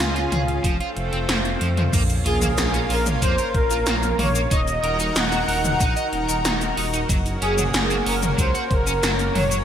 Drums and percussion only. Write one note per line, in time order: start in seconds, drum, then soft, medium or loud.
0.00 snare loud
0.00 closed hi-hat medium
0.16 closed hi-hat soft
0.32 closed hi-hat medium
0.32 mid tom medium
0.48 closed hi-hat soft
0.64 kick loud
0.64 closed hi-hat loud
0.81 closed hi-hat soft
0.97 closed hi-hat soft
1.13 closed hi-hat soft
1.29 snare loud
1.29 closed hi-hat loud
1.45 closed hi-hat soft
1.61 closed hi-hat medium
1.77 closed hi-hat soft
1.77 mid tom medium
1.93 kick loud
1.93 closed hi-hat medium
1.93 crash loud
1.93 cabasa soft
2.10 closed hi-hat soft
2.10 cabasa soft
2.26 closed hi-hat medium
2.42 closed hi-hat soft
2.42 mid tom medium
2.42 cabasa medium
2.58 snare loud
2.58 closed hi-hat loud
2.58 cabasa soft
2.74 closed hi-hat soft
2.74 cabasa soft
2.90 open hi-hat medium
3.06 closed hi-hat soft
3.06 mid tom medium
3.06 cabasa medium
3.22 kick loud
3.22 closed hi-hat medium
3.22 cabasa soft
3.38 closed hi-hat soft
3.38 cabasa soft
3.54 kick loud
3.54 closed hi-hat soft
3.71 closed hi-hat soft
3.71 cabasa medium
3.87 snare loud
3.87 closed hi-hat loud
3.87 cabasa medium
4.03 closed hi-hat soft
4.03 cabasa soft
4.19 open hi-hat medium
4.19 mid tom medium
4.35 closed hi-hat soft
4.35 cabasa medium
4.51 kick loud
4.51 closed hi-hat loud
4.51 cabasa soft
4.68 closed hi-hat soft
4.68 cabasa soft
4.84 closed hi-hat medium
5.00 closed hi-hat soft
5.00 cabasa medium
5.16 snare loud
5.16 closed hi-hat loud
5.16 cabasa soft
5.32 closed hi-hat soft
5.32 cabasa soft
5.49 open hi-hat medium
5.65 closed hi-hat soft
5.65 mid tom medium
5.65 cabasa medium
5.80 kick loud
5.80 closed hi-hat loud
5.80 cabasa soft
5.97 closed hi-hat soft
5.97 cabasa soft
6.13 closed hi-hat soft
6.29 closed hi-hat soft
6.29 cabasa medium
6.45 snare loud
6.45 closed hi-hat loud
6.45 cabasa soft
6.61 closed hi-hat soft
6.61 cabasa soft
6.77 open hi-hat medium
6.94 closed hi-hat soft
6.94 cabasa medium
7.09 kick loud
7.09 closed hi-hat loud
7.09 cabasa soft
7.26 closed hi-hat soft
7.26 cabasa soft
7.42 closed hi-hat medium
7.58 closed hi-hat soft
7.58 mid tom medium
7.58 cabasa medium
7.74 snare loud
7.74 closed hi-hat medium
7.74 cabasa soft
7.90 closed hi-hat soft
7.90 cabasa soft
8.06 open hi-hat medium
8.23 closed hi-hat soft
8.23 mid tom medium
8.23 cabasa medium
8.38 kick loud
8.38 closed hi-hat loud
8.38 cabasa soft
8.55 closed hi-hat soft
8.55 cabasa soft
8.71 kick loud
8.71 closed hi-hat soft
8.87 closed hi-hat soft
8.87 cabasa medium
9.03 snare loud
9.03 closed hi-hat loud
9.03 cabasa medium
9.19 closed hi-hat soft
9.19 cabasa soft
9.35 open hi-hat medium
9.35 mid tom medium
9.51 closed hi-hat soft
9.51 cabasa medium